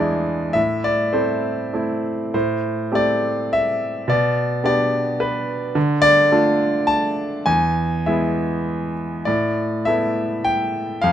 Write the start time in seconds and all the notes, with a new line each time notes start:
Already playing: E2 G#3 D5
0.00 D4 E4
0.53 A2 E5
0.84 D5
1.13 A3 C4 E4 C5
1.73 A3 C4 E4
2.34 A2 C5
2.92 A3 C4 G4 D5
3.53 E5
4.08 B2 D5
4.63 B3 D4 G4 D5
5.20 B4
5.75 D3
6.02 D5
6.32 A3 D4 F4
6.87 A5
7.46 E2 G#5
8.06 G#3 B3 E4 E5
9.25 A2 D5
9.85 A3 B3 E4 E5
10.44 G5
11.02 F2 F5